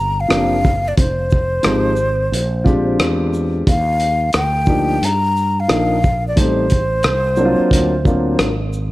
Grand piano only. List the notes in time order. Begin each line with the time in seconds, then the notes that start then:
0.28 F3 A#3 C4 D4 G4
1.63 F3 G#3 C4 D#4 G4
2.64 G#3 C4 D4 F4 G4
4.67 F3 A#3 D4 D#4 G4
5.68 F3 A#3 D4 D#4 A#4
6.36 G3 A3 C4 D#4 G4
7.37 F#3 A#3 C4 D4 E4
7.45 F4
8.05 F#3 A#3 C4 D4 F4